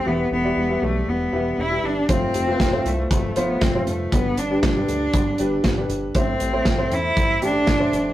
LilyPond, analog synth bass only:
\new Staff \with { instrumentName = "Analog synth bass" } { \clef bass \time 4/4 \key a \minor \tempo 4 = 118 e,,8 e,,8 e,,8 b,,8 e,,8 e,,8 e,,8 g,,8 | f,,8 f,,8 f,,8 c,8 f,,8 f,,8 f,,8 f,,8 | g,,8 g,,8 g,,8 d,8 g,,8 g,,8 g,,8 g,,8 | a,,8 a,,8 a,,8 e,8 a,,8 a,,8 a,,8 f,,8 | }